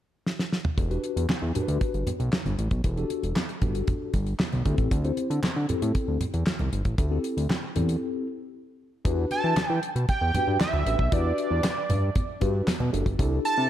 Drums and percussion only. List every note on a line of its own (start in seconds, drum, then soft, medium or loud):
0.26 snare medium
0.39 snare medium
0.53 snare medium
0.65 mid tom loud
0.78 kick loud
0.78 closed hi-hat medium
0.78 muted conga soft
0.91 closed hi-hat soft
1.04 closed hi-hat medium
1.17 closed hi-hat medium
1.29 snare medium
1.29 clap medium
1.29 high conga medium
1.55 closed hi-hat medium
1.55 low conga medium
1.68 closed hi-hat medium
1.81 kick loud
1.81 closed hi-hat medium
1.81 muted conga soft
1.94 closed hi-hat soft
2.07 closed hi-hat medium
2.07 muted conga medium
2.07 low conga medium
2.20 closed hi-hat soft
2.32 snare loud
2.32 clap medium
2.32 high conga medium
2.46 closed hi-hat soft
2.46 high conga medium
2.59 closed hi-hat medium
2.71 kick medium
2.71 closed hi-hat soft
2.84 kick loud
2.84 closed hi-hat loud
2.84 muted conga soft
2.97 closed hi-hat soft
3.10 closed hi-hat medium
3.10 muted conga soft
3.24 closed hi-hat medium
3.36 snare medium
3.36 clap medium
3.36 high conga medium
3.49 closed hi-hat soft
3.62 kick medium
3.62 closed hi-hat medium
3.62 low conga medium
3.75 closed hi-hat medium
3.88 kick loud
3.88 closed hi-hat medium
3.88 muted conga soft
3.88 low conga medium
4.14 kick medium
4.14 closed hi-hat medium
4.14 muted conga soft
4.26 closed hi-hat soft
4.39 snare loud
4.39 clap medium
4.39 high conga medium
4.53 closed hi-hat soft
4.53 high conga medium
4.66 kick medium
4.66 closed hi-hat medium
4.78 kick medium
4.78 closed hi-hat soft
4.91 kick loud
4.91 closed hi-hat loud
4.91 muted conga soft
5.04 closed hi-hat soft
5.17 closed hi-hat medium
5.17 muted conga soft
5.31 closed hi-hat medium
5.43 snare medium
5.43 clap medium
5.43 high conga medium
5.69 closed hi-hat medium
5.69 low conga medium
5.82 closed hi-hat medium
5.95 kick loud
5.95 closed hi-hat medium
5.95 muted conga soft
6.21 closed hi-hat medium
6.21 muted conga medium
6.21 low conga medium
6.34 closed hi-hat soft
6.46 snare loud
6.46 clap medium
6.46 high conga medium
6.59 closed hi-hat soft
6.59 high conga medium
6.73 closed hi-hat medium
6.85 kick medium
6.85 closed hi-hat soft
6.98 kick loud
6.98 closed hi-hat loud
6.98 muted conga soft
7.24 closed hi-hat medium
7.38 closed hi-hat medium
7.50 snare medium
7.50 clap medium
7.50 high conga medium
7.76 closed hi-hat medium
7.76 low conga medium
7.89 closed hi-hat medium
9.05 kick loud
9.05 closed hi-hat loud
9.05 muted conga soft
9.31 closed hi-hat medium
9.31 muted conga soft
9.56 snare loud
9.56 clap medium
9.56 closed hi-hat medium
9.56 high conga medium
9.83 closed hi-hat medium
9.96 closed hi-hat medium
10.09 kick loud
10.09 closed hi-hat medium
10.09 muted conga medium
10.35 closed hi-hat medium
10.35 muted conga medium
10.35 low conga medium
10.60 snare loud
10.60 clap medium
10.60 closed hi-hat medium
10.60 high conga medium
10.73 high conga medium
10.86 closed hi-hat medium
10.99 kick loud
11.12 kick loud
11.12 closed hi-hat loud
11.12 muted conga soft
11.38 closed hi-hat medium
11.63 snare loud
11.63 clap medium
11.63 closed hi-hat loud
11.63 high conga medium
11.90 closed hi-hat medium
11.90 low conga medium
12.15 kick loud
12.15 closed hi-hat medium
12.15 muted conga medium
12.15 low conga medium
12.41 kick medium
12.41 closed hi-hat medium
12.41 muted conga medium
12.67 snare loud
12.67 clap medium
12.67 closed hi-hat medium
12.67 high conga medium
12.80 high conga medium
12.94 closed hi-hat medium
13.06 kick loud
13.06 closed hi-hat soft
13.19 kick loud
13.19 closed hi-hat loud
13.19 muted conga soft
13.45 closed hi-hat medium